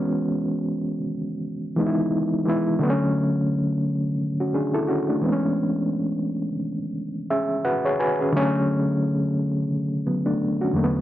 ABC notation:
X:1
M:4/4
L:1/16
Q:"Swing 16ths" 1/4=87
K:Dlyd
V:1 name="Reed electric piano"
z16 | z8 z [CF] [DG] [EA] [CF] [A,D]2 z | z8 z2 [CGe]2 [FBf] [Gc] [FBg] [CG]- | [CG] z8 z [F,B,] [A,D]2 [CF]2 z |]
V:2 name="Reed electric piano"
[E,G,B,C]6 z4 [E,G,B,^DE]4 [E,G,B,E]2 | [D,F,A,B,C]8 z6 [E,G,B,=C^C]2- | [E,G,B,=C^C]6 z8 z2 | [D,F,A,C]8 z6 [E,,D,F,A,^A,B,]2 |]